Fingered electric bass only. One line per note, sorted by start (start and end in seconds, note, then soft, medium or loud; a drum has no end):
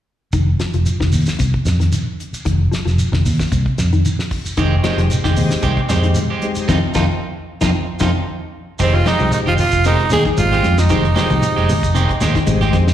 0.33 0.55 F1 medium
0.59 muted fingered electric bass stroke soft
0.74 0.84 F1 medium
1.01 1.11 F1 medium
1.13 1.25 D#2 medium
1.40 1.52 C2 medium
1.65 1.88 F2 medium
2.33 muted fingered electric bass stroke soft
2.46 2.68 F1 medium
2.72 muted fingered electric bass stroke soft
2.86 2.97 F1 medium
3.13 3.24 F1 medium
3.25 3.37 D#2 medium
3.52 3.64 C2 medium
3.79 4.01 F2 medium
4.46 muted fingered electric bass stroke soft
4.58 4.80 F1 medium
4.84 muted fingered electric bass stroke soft
4.98 5.08 F1 medium
5.24 5.35 F1 medium
5.38 5.49 D#2 medium
5.63 5.75 C2 medium
5.90 6.12 F2 medium
6.57 muted fingered electric bass stroke soft
6.69 6.80 F2 medium
6.96 7.06 F2 medium
7.63 7.72 F2 medium
8.01 8.11 F2 medium
8.80 9.02 F1 medium
9.21 9.31 C2 medium
9.48 9.58 F1 medium
9.73 9.95 F1 medium
10.12 10.24 D#2 medium
10.38 10.60 G#1 medium
10.65 10.92 F2 medium
10.91 11.12 F1 loud
11.31 11.41 C2 medium
11.56 11.67 F1 medium
11.83 12.05 F1 medium
12.21 12.33 D#2 medium
12.48 12.69 G#1 loud
12.73 12.94 F2 medium